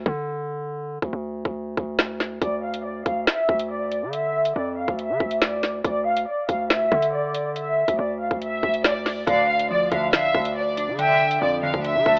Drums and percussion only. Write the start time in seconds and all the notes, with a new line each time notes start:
0.06 kick
1.02 kick
1.45 kick
1.77 kick
1.99 snare
2.20 snare
2.42 kick, closed hi-hat
2.74 closed hi-hat
3.06 kick, closed hi-hat
3.27 snare, closed hi-hat
3.49 kick
3.59 closed hi-hat
3.92 closed hi-hat
4.13 closed hi-hat
4.45 closed hi-hat
4.88 kick
4.99 closed hi-hat
5.20 kick
5.31 closed hi-hat
5.42 snare, closed hi-hat
5.63 snare, closed hi-hat
5.84 kick, closed hi-hat
6.17 closed hi-hat
6.49 kick, closed hi-hat
6.70 snare, closed hi-hat
6.92 kick
7.02 closed hi-hat
7.34 closed hi-hat
7.56 closed hi-hat
7.88 kick, closed hi-hat
8.31 kick
8.42 closed hi-hat
8.63 kick
8.74 closed hi-hat
8.84 snare, closed hi-hat
9.06 snare, open hi-hat
9.27 kick, closed hi-hat
9.59 closed hi-hat
9.92 kick, closed hi-hat
10.13 snare, closed hi-hat
10.35 kick
10.45 closed hi-hat
10.77 closed hi-hat
10.99 closed hi-hat
11.31 closed hi-hat
11.74 kick
11.85 closed hi-hat
12.06 kick